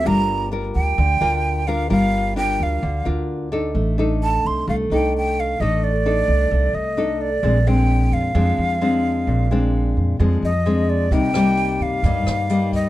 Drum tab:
HH |--------|--------|--------|--------|
SD |--------|--------|--------|--------|
BD |--------|--------|--------|--------|

HH |--------|--------|xxxxxxxx|
SD |--------|--------|-r---r--|
BD |--------|--------|o--oo--o|